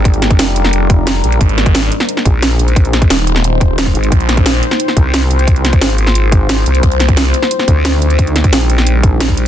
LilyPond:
<<
  \new Staff \with { instrumentName = "Ambient pad" } { \time 4/4 \key bes \mixolydian \tempo 4 = 177 << { bes'1 | c''1~ | c''1~ | c''1~ |
c''1~ | c''1~ | c''1 | } \\ { <g bes d'>1 | <aes c' ees'>1~ | <aes c' ees'>1 | <bes c' f'>1~ |
<bes c' f'>1 | <g c' ees'>1~ | <g c' ees'>1 | } >> }
  \new Staff \with { instrumentName = "Wobble bass" } { \clef bass \time 4/4 \key bes \mixolydian aes,,4 f,,2~ f,,8 bes,,8 | r2 r8 bes,,4.~ | bes,,4 r2 r8 aes,,8 | r2 r8 c,4.~ |
c,4 aes,,2~ aes,,8 c,8 | r2 r8 d,4.~ | d,4 bes,,2. | }
  \new Staff \with { instrumentName = "Detuned saw bass" } { \clef bass \time 4/4 \key bes \mixolydian r1 | aes,,4. r2 r8 | r4 ees,,2~ ees,,8 r8 | bes,,4. r2 r8 |
r1 | c,4. r2 r8 | r1 | }
  \new DrumStaff \with { instrumentName = "Drums" } \drummode { \time 4/4 <hh bd>16 hh16 <hh sn>16 <hh bd>16 <hh sn>16 hh16 hh16 sn16 hh8 <hh bd>8 <hh sn>8 hh16 hh16 | <hh bd>16 hh16 <hh sn>16 <hh bd>16 <hh sn>16 hh16 hh16 sn16 hh16 sn16 <hh bd>8 <hh sn>8 hh16 hh16 | <hh bd>16 hh16 <hh sn>16 <hh bd>16 <hh sn>16 hh16 hh16 sn16 hh8 <hh bd>8 <hh sn>16 bd16 hh16 hh16 | <hh bd>16 hh16 <hh sn>16 <hh bd>16 <hh sn>16 hh16 hh16 sn16 hh16 sn16 <hh bd>8 <hh sn>8 hh16 hh16 |
<hh bd>16 hh16 <hh sn>16 <hh bd>16 <hh sn>16 hh16 hh16 sn16 hh8 <hh bd>8 <hh sn>8 hh16 hh16 | <hh bd>16 hh16 <hh sn>16 <hh bd>16 <hh sn>16 hh16 hh16 sn16 hh16 sn16 <hh bd>8 <hh sn>8 hh16 hh16 | <hh bd>16 hh16 <hh sn>16 <hh bd>16 <hh sn>16 hh16 hh16 sn16 hh8 <hh bd>8 <hh sn>16 bd16 hh8 | }
>>